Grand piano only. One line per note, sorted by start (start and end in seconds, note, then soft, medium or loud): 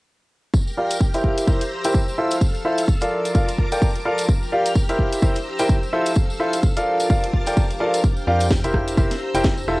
0.77 0.95 F4 medium
0.77 0.95 G4 medium
0.77 0.95 A#4 medium
0.77 0.95 D5 medium
0.77 0.95 F5 medium
1.14 1.45 E4 medium
1.14 1.45 G4 medium
1.14 1.45 A#4 medium
1.14 1.45 C5 medium
1.14 1.45 E5 medium
1.48 1.60 E4 medium
1.48 1.60 G4 medium
1.48 1.60 A#4 medium
1.48 1.60 C5 medium
1.48 1.60 E5 medium
1.85 2.00 E4 medium
1.85 2.00 G4 medium
1.85 2.00 A#4 medium
1.85 2.00 C5 medium
1.85 2.00 G5 medium
2.18 2.36 E4 medium
2.18 2.36 F4 medium
2.18 2.36 A4 medium
2.18 2.36 C5 medium
2.18 2.36 E5 medium
2.65 2.83 E4 medium
2.65 2.83 F4 medium
2.65 2.83 A4 medium
2.65 2.83 C5 medium
2.65 2.83 E5 medium
3.02 3.33 F4 medium
3.02 3.33 A4 medium
3.02 3.33 A#4 medium
3.02 3.33 D5 medium
3.02 3.33 F5 medium
3.35 3.47 F4 medium
3.35 3.47 A4 medium
3.35 3.47 A#4 medium
3.35 3.47 D5 medium
3.35 3.47 F5 medium
3.72 3.88 F4 medium
3.72 3.88 A4 medium
3.72 3.88 A#4 medium
3.72 3.88 D5 medium
3.72 3.88 G5 medium
4.05 4.23 F4 medium
4.05 4.23 A4 medium
4.05 4.23 A#4 medium
4.05 4.23 D5 medium
4.05 4.23 F5 medium
4.52 4.70 F4 medium
4.52 4.70 G4 medium
4.52 4.70 A#4 medium
4.52 4.70 D5 medium
4.52 4.70 F5 medium
4.89 5.20 E4 medium
4.89 5.20 G4 medium
4.89 5.20 A#4 medium
4.89 5.20 C5 medium
4.89 5.20 E5 medium
5.22 5.35 E4 medium
5.22 5.35 G4 medium
5.22 5.35 A#4 medium
5.22 5.35 C5 medium
5.22 5.35 E5 medium
5.59 5.75 E4 medium
5.59 5.75 G4 medium
5.59 5.75 A#4 medium
5.59 5.75 C5 medium
5.59 5.75 G5 medium
5.93 6.11 E4 medium
5.93 6.11 F4 medium
5.93 6.11 A4 medium
5.93 6.11 C5 medium
5.93 6.11 E5 loud
6.40 6.58 E4 medium
6.40 6.58 F4 medium
6.40 6.58 A4 medium
6.40 6.58 C5 medium
6.40 6.58 E5 medium
6.77 7.08 F4 medium
6.77 7.08 A4 medium
6.77 7.08 A#4 medium
6.77 7.08 D5 medium
6.77 7.08 F5 medium
7.10 7.22 F4 medium
7.10 7.22 A4 medium
7.10 7.22 A#4 medium
7.10 7.22 D5 medium
7.10 7.22 F5 medium
7.47 7.63 F4 medium
7.47 7.63 A4 medium
7.47 7.63 A#4 medium
7.47 7.63 D5 medium
7.47 7.63 G5 medium
7.80 7.98 F4 medium
7.80 7.98 A4 medium
7.80 7.98 A#4 medium
7.80 7.98 D5 medium
7.80 7.98 F5 medium
8.27 8.45 F4 medium
8.27 8.45 G4 medium
8.27 8.45 A#4 medium
8.27 8.45 D5 medium
8.27 8.45 F5 medium
8.64 8.95 E4 medium
8.64 8.95 G4 medium
8.64 8.95 A#4 medium
8.64 8.95 C5 medium
8.64 8.95 E5 medium
8.97 9.10 E4 medium
8.97 9.10 G4 medium
8.97 9.10 A#4 medium
8.97 9.10 C5 medium
8.97 9.10 E5 medium
9.35 9.50 E4 medium
9.35 9.50 G4 medium
9.35 9.50 A#4 medium
9.35 9.50 C5 medium
9.35 9.50 G5 medium
9.68 9.80 E4 medium
9.68 9.80 F4 medium
9.68 9.80 A4 medium
9.68 9.80 C5 medium
9.68 9.80 E5 medium